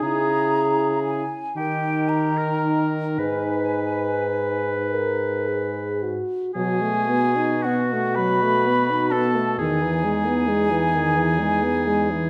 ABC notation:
X:1
M:6/8
L:1/16
Q:3/8=39
K:B
V:1 name="Flute"
a4 g2 =g2 a2 z2 | g6 z6 | g4 f2 b4 =a2 | g12 |]
V:2 name="Clarinet"
G4 z2 A6 | B8- B z3 | F12 | D12 |]
V:3 name="Oboe"
G4- G z =G3 A3 | B8- B3 z | G4 F2 B4 =A2 | G12 |]
V:4 name="French horn"
E4- E z D6 | D6 A2 G2 F2 | F, =A, B, D B, A, F, A, B, D B, A, | D, E, G, B, G, E, D, E, G, B, G, E, |]
V:5 name="Bassoon" clef=bass
C,4 z2 D,6 | G,,8- G,,2 z2 | B,,12 | E,,12 |]